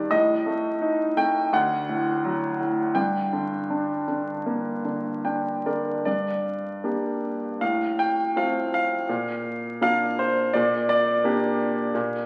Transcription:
Already playing: G2 D#3 G4 D5
0.11 A2 D#5
0.46 A3
0.82 D#4
1.17 A3 G5
1.53 D2 F#5
1.89 A2
2.25 F#3
2.60 A2
2.95 G2 G5
3.33 D3
3.70 D4
4.08 D3
4.46 A#3
4.85 D3
5.25 D4 G5
5.66 D3 A#4 D5
6.05 G2 D5
6.84 A#3 D4 G4
7.61 A2 F5
7.99 G5
8.36 A3 C4 F4 F5
8.74 F5
9.09 A#2
9.81 A#3 D4 F4 F5
10.19 C5
10.53 A#2 D5
10.89 D5
11.24 A#3 D4 G4
11.95 A#2

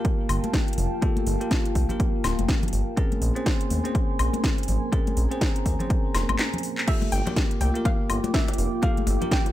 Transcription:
Already playing: A#3 F4 G4 A#4 F5 G5 A5
0.05 kick, closed hi-hat
0.29 G1, open hi-hat, high woodblock
0.44 closed hi-hat, high conga
0.54 kick, snare, closed hi-hat
0.68 closed hi-hat
0.73 closed hi-hat
0.78 F1, open hi-hat, low conga
1.02 A#3 F4 G4 A4, kick, closed hi-hat
1.17 closed hi-hat, high conga
1.27 G1, open hi-hat
1.41 A#3 F4 G4 A#4, closed hi-hat
1.51 kick, snare, closed hi-hat
1.66 closed hi-hat
1.75 C2, kick, open hi-hat, high conga
1.89 A#3 F4 G4 A#4, closed hi-hat, low conga
2.00 kick, closed hi-hat
2.24 D1, snare, open hi-hat, high woodblock
2.39 F1, closed hi-hat, high conga
2.49 kick, snare, closed hi-hat
2.63 closed hi-hat, low conga
2.68 closed hi-hat
2.73 G1, open hi-hat
2.97 C4 C#4 G#4 A#4 G#5 C6, kick, closed hi-hat
3.12 closed hi-hat, high conga
3.22 A#1 C6, open hi-hat
3.35 C4 C#4 G#4 C5, closed hi-hat
3.44 G#5, kick, snare, closed hi-hat
3.61 closed hi-hat
3.70 D#2, open hi-hat, high conga
3.84 C4 C#4 G#4 C5, closed hi-hat
3.95 kick, closed hi-hat
4.19 A#1, open hi-hat, high woodblock
4.33 closed hi-hat, high conga
4.44 kick, snare, closed hi-hat
4.58 closed hi-hat
4.63 closed hi-hat
4.68 G#1, open hi-hat, low conga
4.92 C4 C#4 G#4 A#4 A#5, kick, closed hi-hat
5.07 closed hi-hat, high conga
5.17 A#1, open hi-hat
5.31 C4 C#4 G#4 C5, closed hi-hat
5.41 kick, snare, closed hi-hat
5.56 closed hi-hat
5.65 D#2, kick, open hi-hat, high conga
5.79 C4 C#4 G#4 C5, closed hi-hat, low conga
5.90 kick, closed hi-hat
6.14 F1, snare, open hi-hat, high woodblock
6.29 G#1, closed hi-hat, high conga, high woodblock
6.39 snare, clap, closed hi-hat
6.54 closed hi-hat, low conga
6.58 closed hi-hat
6.63 open hi-hat
6.78 clap
6.87 A#3 F4 G4 A4 E5 G5 D6, kick, closed hi-hat, crash
7.02 closed hi-hat, high bongo, high conga
7.11 G1 G5, open hi-hat
7.26 A#3 F4 G4 A#4, closed hi-hat, high bongo, low conga
7.36 kick, snare, closed hi-hat
7.51 closed hi-hat
7.61 C2 G5, open hi-hat, high bongo, high conga
7.74 A#3 F4 G4 A#4, closed hi-hat
7.85 F5, kick, closed hi-hat, high bongo
8.09 G1, open hi-hat, high woodblock
8.24 closed hi-hat, high bongo, high conga
8.34 E5, kick, snare, closed hi-hat
8.48 closed hi-hat, high bongo
8.53 closed hi-hat
8.58 F1, open hi-hat
8.82 A#3 F4 G4 A4 F5, kick, closed hi-hat, high bongo
8.97 closed hi-hat, high conga
9.07 G1, open hi-hat, high bongo
9.21 A#3 F4 G4 A#4, closed hi-hat, low conga
9.31 G5, kick, snare, closed hi-hat
9.46 closed hi-hat, high bongo

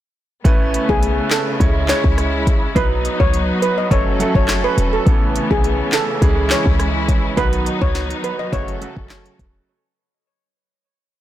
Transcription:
0.44 A1 C#3 A3 B3 C#4 E4 B4, kick, closed hi-hat
0.74 closed hi-hat
0.89 B1 G#4, kick
1.03 closed hi-hat
1.31 A4, snare, clap, closed hi-hat
1.60 C#2 G#3 C#4 E4 C#5, kick, closed hi-hat
1.88 G#3 C#4 E4 C#5, snare, clap, closed hi-hat
2.04 C#2, kick
2.18 cross-stick, closed hi-hat
2.47 B1, kick, closed hi-hat
2.75 B1 F#3 B3 D#4 B4, kick, closed hi-hat
3.05 closed hi-hat
3.20 C#2 C#5, kick
3.34 closed hi-hat
3.62 B4, closed hi-hat
3.78 D#5
3.90 F#1 F#3 A3 C#4 A4 C#5, kick, closed hi-hat
4.19 F#3 A3 C#4 A4, closed hi-hat
4.35 F#1 C#5, kick
4.48 cross-stick, snare, clap, closed hi-hat
4.64 B4
4.78 E1, closed hi-hat
4.93 A4
5.06 A1 C#3 E3 A3 B3 C#4 A4, kick, closed hi-hat
5.36 closed hi-hat
5.51 B1 G#4, kick
5.64 closed hi-hat
5.92 A4, snare, clap, closed hi-hat
6.21 C#2 E3 G#3 C#4 E4 G#4, kick, closed hi-hat
6.50 E3 G#3 C#4 G#4 C#5, snare, clap, closed hi-hat
6.66 C#2, kick
6.79 cross-stick, closed hi-hat
7.08 B1, kick, closed hi-hat
7.37 B1 D#3 F#3 B3 D#4 F#4 B4, kick, closed hi-hat
7.53 closed hi-hat
7.66 closed hi-hat
7.82 C#2 C#5, kick
7.95 snare, closed hi-hat
8.10 closed hi-hat
8.24 B4, closed hi-hat
8.39 D#5
8.52 F#1 C#3 F#3 A3 C#4 F#4 A4 C#5, kick, closed hi-hat
8.68 closed hi-hat
8.81 C#3 F#3 A3 F#4, closed hi-hat
8.97 F#1, kick
9.09 cross-stick, snare, clap, closed hi-hat
9.26 closed hi-hat
9.39 E1, kick, closed hi-hat

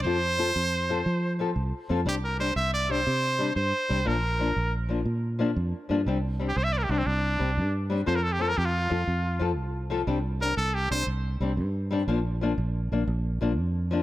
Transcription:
0.03 F2 F3 C4 F4 A4 C5
0.38 F3 C4 F4 A4
0.56 F2
0.89 F3 C4 F4 A4
1.06 F3
1.39 F3 C4 F4 A4
1.56 C2
1.89 F2 F3 C4 F4 A4
2.05 C2 G3 C4 D4 G4
2.24 A#4
2.39 G3 C4 D4 C5
2.56 C2 E5
2.74 D5
2.89 G3 C4 D4 C5
3.07 C3
3.39 G3 D4
3.56 G2 C5
3.89 C2 G3 C4 D4
4.05 A#1 F3 A#3 D4 A#4
4.39 F3 A#3 D4
4.56 A#1
4.89 F3 A#3 D4
5.06 A#2
5.39 F3 A#3 D4
5.56 F2
5.89 G2 F3 A#3 D4
6.06 C2 G3 C4 D4
6.40 G3 C4 D4
6.48 G4
6.56 C2 C5
6.64 E5
6.73 D5
6.78 A#4
6.83 G4
6.89 C2 G3 C4 D4
6.98 C4
7.06 C2 D4
7.39 C2 G3 C4 D4
7.57 G2
7.90 G3 C4 D4
8.06 F2 F3 C4 F4 A4 C5
8.15 A#4
8.23 A4
8.32 G4
8.39 F3 C4 F4 A4
8.49 A#4
8.57 F2 G4
8.65 F4
8.90 F2 F3 C4 F4 A4
9.07 F2
9.39 F2 F3 C4 F4 A4
9.58 C2
9.90 F3 C4 F4 A4
10.07 C2 G3 C4 D4
10.40 G3 C4 D4 A#4
10.57 C2 A4
10.74 G4
10.91 C2 G3 C4 D4 C5
11.07 C2
11.40 C2 G3 C4 D4
11.57 G2
11.91 G3 C4 D4
12.08 A#1 F3 A#3 D4
12.41 F3 A#3 D4
12.58 A#1
12.92 A#1 A#3 D4
13.08 A#1
13.41 A#1 F3 A#3 D4
13.59 F2
13.91 F3 A#3 D4

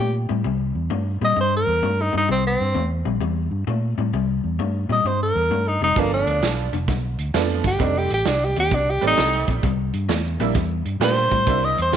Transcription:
Already playing: C3 G4
0.00 A#2 A3
0.29 A2 C3 G3
0.44 C2 C3 G3
0.75 E2
0.90 G2 C3 A3
1.21 A#2 C3 G3 D#5
1.36 G2 C3 G3
1.41 C5
1.56 A#4
1.67 E2
1.82 G2 C3 A3
2.01 D#4
2.13 G2 C3 G3
2.18 D#4
2.28 C2 C3 G3 C4
2.47 C4
2.60 G2
2.75 E2 C3 A3
3.05 A#1 C3 G3
3.21 E2 C3 G3
3.51 G2
3.67 A#2 C3 A3
3.98 A2 C3 G3
4.13 C2 C3 G3
4.44 E2
4.58 G2 C3 A3
4.89 A#2 C3 G3 D#5
5.04 G2 C3 G3 C5
5.23 A#4
5.35 E2
5.50 G2 C3 A3
5.68 D#4
5.81 F1 C3 G3 D#4
5.96 G1 G2 D3 F3 A3 A#3 B3 D4, kick, closed hi-hat
6.14 D4
6.26 D2, closed hi-hat
6.41 B1 G2 E3, snare, closed hi-hat
6.73 F1 G2 D3, closed hi-hat
6.88 B1 G2 D3, kick, snare, closed hi-hat
7.18 D2, closed hi-hat
7.34 F2 G2 E3 F3 A3 B3 D4, snare, closed hi-hat
7.64 G1 G2 D3 G4, kick, snare, closed hi-hat
7.79 F1 F2 C3 G3 A3 C4 D#4, kick, closed hi-hat
7.83 D4
7.98 G4
8.10 A1 G4, closed hi-hat
8.25 C2 F2 D3 D4, snare, closed hi-hat
8.45 G4
8.56 D#2 F2 C3 G4, closed hi-hat
8.71 C2 F2 C3 D4, kick, closed hi-hat
8.90 G4
9.01 A1 G3 A3 C4 D5, closed hi-hat
9.07 D#4
9.17 C2 F2 D3, snare, closed hi-hat
9.48 A#1 F2 C3, kick, closed hi-hat
9.63 C2 C3 G3, kick, closed hi-hat
9.93 G2, closed hi-hat
10.09 E2 C3 A3, snare, closed hi-hat
10.40 A#1 C3 G3 A#3 D4 E4, closed hi-hat
10.55 E2 C3 G3, kick, snare, closed hi-hat
10.85 G2, closed hi-hat
11.00 A#2 C3 G3 A3 A#3 D4 G4, snare, closed hi-hat
11.04 C5
11.31 A2 C3 G3, kick, closed hi-hat
11.47 C2 C3 G3 A#3 D4 E4, kick, closed hi-hat
11.65 D#5
11.78 E2 C5, closed hi-hat
11.92 G2 C3 A3, snare, closed hi-hat

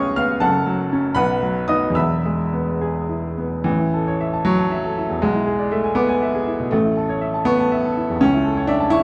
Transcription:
Already playing: C#2 G#3 B3 C#4 G#4 C#5 D#5 F5 F#5 C#6 D#6 F6 F#6
0.16 B3 F5 F6
0.40 F#1 F#2 A4 F#5 A5
0.66 F#3
0.93 C#4
1.15 B1 B4 F#5 B5
1.43 F#3
1.68 B3 D#4 D#5 D#6
1.90 E2
1.95 E1 E5 B5 E6
2.25 G#3
2.53 B3
2.81 G#4
3.09 E4
3.38 B3
3.64 A1 E3
3.79 E4
3.94 A4
4.08 C#5
4.20 E5
4.33 A5
4.45 F#3 C#6
4.58 A5
4.72 E5
4.84 A4
4.97 E4
5.10 E2
5.22 B1 G#3
5.35 E4
5.46 G#4
5.59 D5
5.71 A3 E5
5.84 G#5
5.95 B3 D6
6.09 G#5
6.23 E5
6.35 G#4
6.47 E4
6.60 B2
6.71 A1 A3
6.85 E4
6.97 A4
7.09 C#5
7.21 E5
7.34 A5
7.45 B3 C#6
7.60 A5
7.72 E5
7.85 A4
7.97 E4
8.10 E2
8.21 C#2 C#4
8.34 E4
8.44 A4
8.57 C#5
8.67 D4 E5
8.80 A5
8.90 E4 C#6

